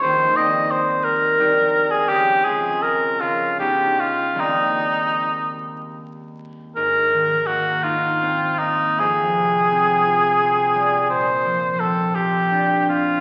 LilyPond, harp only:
\new Staff \with { instrumentName = "Harp" } { \time 6/8 \key ees \mixolydian \tempo 4. = 55 <ees, ees'>8 <g c' ees' g'>4. <g c' ees' g'>4 | des,8 <aes c' f'>4 des,8 <aes ces' des' ees'>4 | <ees, g bes c' ees'>2. | \key aes \major aes,8 ees8 bes8 ees'8 c'8 bes8 |
f,8 c8 c'8 f'8 c'8 g8 | bes,8 f8 c'8 f'8 d'8 c'8 | }